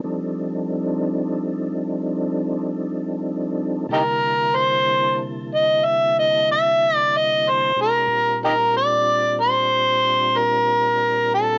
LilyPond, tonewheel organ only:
\new Staff \with { instrumentName = "Tonewheel organ" } { \time 12/8 \key f \mixolydian \tempo 4. = 62 <f g c' d' ees' a'>1. | <c d g bes e' a''>1. | <b, aes des' ees' ges' aes'>8 <bes, g c' d' f' g'>1~ <bes, g c' d' f' g'>4. | }